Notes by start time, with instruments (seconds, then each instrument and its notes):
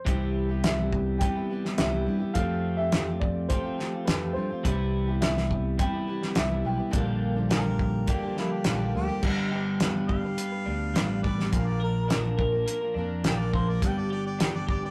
Already playing: grand piano C5
0.05 picked electric bass C2, clean electric guitar C3 E3 G3 B3 G4, steel-string acoustic guitar C3 G3 E4 G4, kick, closed hi-hat
0.49 steel-string acoustic guitar B3 E4 G4
0.62 steel-string acoustic guitar C3 G3 B3 E4 G4, grand piano E5, snare, closed hi-hat
0.93 kick
1.18 clean electric guitar C3 E3 G3 B3, grand piano G5, kick, closed hi-hat
1.22 clean electric guitar G4
1.35 steel-string acoustic guitar B3 E4 G4
1.50 steel-string acoustic guitar G3 B3 E4 G4
1.64 steel-string acoustic guitar B3 E4 G4, snare
1.77 picked electric bass C2, steel-string acoustic guitar C3 G3 B3 E4 G4, grand piano E5, snare, closed hi-hat
2.07 picked electric bass G2, steel-string acoustic guitar G3 B3 E4 G4
2.19 steel-string acoustic guitar B3 E4 G4
2.34 picked electric bass F2, clean electric guitar F3 A3 C4 G4, steel-string acoustic guitar F3 A3 C4 F4 G4, grand piano F5, kick, closed hi-hat
2.77 steel-string acoustic guitar C4 F4 G4, grand piano E5
2.92 steel-string acoustic guitar F3 A3 C4 F4 G4, snare, closed hi-hat
3.08 steel-string acoustic guitar C4 F4 G4
3.20 grand piano D5, kick
3.48 clean electric guitar F3 A3 C4 G4, grand piano C5, kick, closed hi-hat
3.63 steel-string acoustic guitar C4 F4 G4
3.78 steel-string acoustic guitar A3 C4 F4 G4, snare
3.93 steel-string acoustic guitar C4 F4 G4
4.05 picked electric bass F2, steel-string acoustic guitar F3 A3 C4, grand piano B4, snare, closed hi-hat
4.09 steel-string acoustic guitar F4 G4
4.33 picked electric bass G2, steel-string acoustic guitar A3 C4, grand piano C5
4.38 steel-string acoustic guitar F4 G4
4.50 steel-string acoustic guitar C4 F4 G4
4.63 picked electric bass C2, clean electric guitar C3 E3 G3 B3 E4, steel-string acoustic guitar C3 G3 E4 G4, kick, closed hi-hat
5.08 steel-string acoustic guitar B3 E4 G4
5.21 steel-string acoustic guitar C3 G3 B3 E4 G4, grand piano E5, snare, closed hi-hat
5.35 steel-string acoustic guitar B3 E4 G4, snare
5.51 kick
5.78 clean electric guitar C3 E3 G3 B3 E4, grand piano G5, kick, closed hi-hat
5.92 steel-string acoustic guitar B3 E4 G4
6.07 steel-string acoustic guitar G3 B3 E4 G4
6.22 snare
6.35 picked electric bass C2, steel-string acoustic guitar C3 G3 B3 E4 G4, grand piano E5, snare, closed hi-hat
6.64 picked electric bass B1, steel-string acoustic guitar G3 B3 E4 G4, grand piano G5
6.77 steel-string acoustic guitar B3 E4 G4
6.90 picked electric bass A#1, steel-string acoustic guitar A#2 D3 F3 A#3 D4 G4, clean electric guitar A#2 D3 G3 D4 F4, kick, closed hi-hat
7.35 steel-string acoustic guitar F3 A#3 D4 G4
7.49 steel-string acoustic guitar A#2 D3 F3 A#3 D4 G4, snare, closed hi-hat
7.55 harmonica A#4
7.65 steel-string acoustic guitar F3 A#3 D4 G4
7.79 kick
8.07 clean electric guitar A#2 D3 G3 D4 F4, harmonica G4, kick, closed hi-hat
8.23 steel-string acoustic guitar F3 A#3 D4 G4
8.37 steel-string acoustic guitar F3 A#3 D4 G4, harmonica E4, snare
8.52 harmonica G4
8.64 picked electric bass A#1, steel-string acoustic guitar A#2 D3 F3 A#3 D4 G4, snare, closed hi-hat
8.94 picked electric bass D2, steel-string acoustic guitar F3 A#3 D4 G4, harmonica G4
9.09 steel-string acoustic guitar F3 A#3 D4 G4
9.22 picked electric bass G1, clean electric guitar G2, steel-string acoustic guitar G2 D3 G3 B3 D4 B4, kick, crash
9.51 steel-string acoustic guitar G3 B3 D4 B4, clean electric guitar G4
9.80 steel-string acoustic guitar G2 D3 G3 B3 D4 B4, clean electric guitar D4, snare, closed hi-hat
10.08 clean electric guitar G4, harmonica F5, kick
10.24 steel-string acoustic guitar G3 B3 D4 B4
10.38 clean electric guitar B3, closed hi-hat
10.52 steel-string acoustic guitar G3 B3 D4 B4
10.65 picked electric bass D2, steel-string acoustic guitar G3 B3 D4 B4, clean electric guitar D4
10.94 picked electric bass A1, steel-string acoustic guitar G2 D3 G3 B3 D4 B4, clean electric guitar G3, snare, closed hi-hat
11.22 steel-string acoustic guitar G3 B3 D4 B4, clean electric guitar B3, harmonica D5, kick
11.37 steel-string acoustic guitar G3 B3 D4 B4, snare
11.51 picked electric bass A#1, steel-string acoustic guitar A#2 D3 F3 A#3 D4 A#4, clean electric guitar A#2, harmonica F5, kick, closed hi-hat
11.67 harmonica D5
11.80 steel-string acoustic guitar F3 A#3 D4, clean electric guitar A#4, harmonica A#4
11.84 steel-string acoustic guitar A#4
12.08 steel-string acoustic guitar A#2 D3 F3 A#3 D4 A#4, clean electric guitar D4, snare, closed hi-hat
12.38 clean electric guitar A#4, kick
12.52 steel-string acoustic guitar F3 A#3 D4 A#4
12.66 clean electric guitar A#3, closed hi-hat
12.81 steel-string acoustic guitar F3 A#3 D4 A#4
12.94 picked electric bass F2, steel-string acoustic guitar F3 A#3 D4, clean electric guitar D4
12.98 steel-string acoustic guitar A#4
13.24 picked electric bass A#1, steel-string acoustic guitar A#2 D3 F3 A#3 D4 A#4, clean electric guitar F3, harmonica G5, snare, closed hi-hat
13.38 harmonica D5
13.52 steel-string acoustic guitar F3 A#3 D4 A#4, clean electric guitar A#3, harmonica C5, kick
13.67 steel-string acoustic guitar F3 A#3 D4 A#4, harmonica D5
13.81 picked electric bass G1, clean electric guitar G2, steel-string acoustic guitar G2 D3 G3 B3 D4 G4, harmonica G5, kick, closed hi-hat
13.98 harmonica D5
14.10 steel-string acoustic guitar G3 B3 D4, clean electric guitar G4, harmonica D5
14.15 steel-string acoustic guitar G4
14.26 harmonica D5
14.39 steel-string acoustic guitar G2 D3 G3 B3 D4 G4, clean electric guitar D4, harmonica G5, snare, closed hi-hat
14.55 harmonica D5
14.67 clean electric guitar G4, harmonica D5, kick
14.83 steel-string acoustic guitar G3 B3 D4 G4, harmonica D5